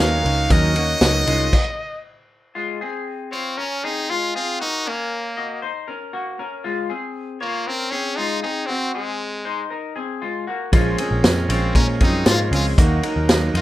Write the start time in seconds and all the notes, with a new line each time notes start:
Already playing: D#4 F#4 C#5
0.00 D#2 F#3 C#4 D#4 A#4 F5
0.23 C#2 C#4 D#4 A#4, open hi-hat, ride, tambourine
0.49 D#2 D#3 F#3 C#4 D#4 A#4 D#5, kick, hi-hat pedal, ride, tambourine
0.75 A#3 C#4 D#4 F#4 A#4, ride, tambourine
1.01 C#2 F#3 A#3 C#4 D#4 F#4 A#4, snare, ride, tambourine
1.26 C2 G#3 C#4 D#4 F4 A#4, ride, tambourine
1.53 kick, crash
2.55 G#3 F4
2.81 C4 G#4
3.32 C4 F4 C#5
3.57 C#4 A#4
3.84 C4 D#4 G#4
4.10 G#3 F4
4.35 C4 F4 G#4
4.60 A#3 D#4 F#4
4.86 A#3 C#4 A#4
5.37 F#4 D#5
5.62 D#4 C5
5.88 C#4 A#4
6.13 A#3 F#4
6.39 C#4 A#4
6.64 G#3 F4
6.90 C4 G#4
7.41 A#3 F4 C#5
7.67 C4 C#4 A#4
7.90 C4 C#4 G#4
8.16 G#3 D#4 F4
8.43 C4 D#4 G#4
8.66 C4 F#4
8.94 G#3 C4 G#4
9.45 D#4 C5
9.70 D#4 A#4
9.96 C4 G#4
10.22 G#3 F4
10.47 A#3 F#4
10.72 A#1 A#2 F3 G#3 C#4 F4 G#4 A#4, kick, ride, tambourine
10.98 G#3 C4 C#4 G#4, ride, tambourine
11.03 F3
11.11 A#1
11.24 F2 A#2 F3, snare, ride, tambourine
11.28 G#3 C#4
11.49 A#1 G#3 C4 C#4 F4 C#5, ride, tambourine
11.53 F3
11.75 A#2 F3 G#3 C#4 A#4, kick, ride
12.00 F#2 F3 G#3 C4 C#4 D#4 G#4, kick, ride, tambourine
12.26 G#2 A#2 F3 G#3 F4, snare, ride, tambourine
12.30 C#4
12.51 C#2 F3 G#3 C4 C#4 F4 G#4, open hi-hat, ride, tambourine
12.78 D#2 D#3 F#3 A#3 D#4 F#4 A#4, kick, hi-hat pedal, ride, tambourine
13.03 F#3 A#3 C#4 D#4 A#4, ride, tambourine
13.16 D#2
13.29 D#3 F#3 A#3 D#4, snare, ride, tambourine
13.54 F2 F#3 A#3 D#4 F4 F#4 D#5, ride, tambourine